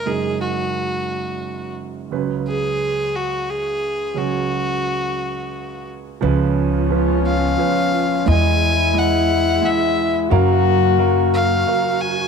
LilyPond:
<<
  \new Staff \with { instrumentName = "Violin" } { \time 3/4 \key cis \mixolydian \tempo 4 = 88 gis'8 fis'2 r8 | r8 gis'4 fis'8 gis'4 | fis'2~ fis'8 r8 | r4. eis''4. |
gis''4 fis''4 e''8. r16 | r4. eis''4 gis''8 | }
  \new Staff \with { instrumentName = "French horn" } { \time 3/4 \key cis \mixolydian r2. | r2. | r2. | cis'2. |
e'2. | fis'2~ fis'8 r8 | }
  \new Staff \with { instrumentName = "String section" } { \time 3/4 \key cis \mixolydian r2. | r2. | r2. | <cis b eis'>2. |
<gis e'>2. | <ais fis'>2. | }
  \new Staff \with { instrumentName = "Grand piano" } { \time 3/4 \key cis \mixolydian <gis dis' ais'>2. | <fis cis' b'>2. | <fis cis' gis'>2. | <eis cis' b'>4 <eis cis' b'>4 <eis cis' b'>4 |
<gis e' dis''>4 <gis e' dis''>4 <gis e' fis''>4 | <fis ais' eis''>4 <fis ais' eis''>4 <fis ais' eis''>4 | }
  \new Staff \with { instrumentName = "Grand piano" } { \clef bass \time 3/4 \key cis \mixolydian <fis,, fis,>2. | <cis, cis>2. | <cis, cis>2. | <cis, cis>2. |
<e, e>2. | <fis,, fis,>2. | }
  \new Staff \with { instrumentName = "Upright bass" } { \clef bass \time 3/4 \key cis \mixolydian r2. | r2. | r2. | cis,2 r4 |
e,2 r4 | fis,2 r4 | }
>>